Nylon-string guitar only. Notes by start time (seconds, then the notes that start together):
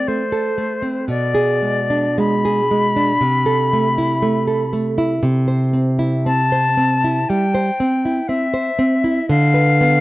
Already playing: C4
0.08 A3
0.32 A4
0.58 A3
0.82 C4
1.08 B2
1.35 G#4
1.62 G#3
1.90 D4
2.18 G#3
2.45 G#4
2.71 G#3
2.96 D4
3.21 C3
3.46 A4
3.73 A3
3.98 E4
4.22 A3
4.47 A4
4.73 A3
4.98 E4
5.23 C3
5.48 C5
5.73 C4
5.99 E4
6.26 C4
6.52 C5
6.77 C4
7.04 E4
7.30 G3
7.54 C5
7.80 C4
8.05 E4
8.29 C4
8.54 C5
8.79 C4
9.04 E4
9.29 D3
9.54 B4
9.81 B3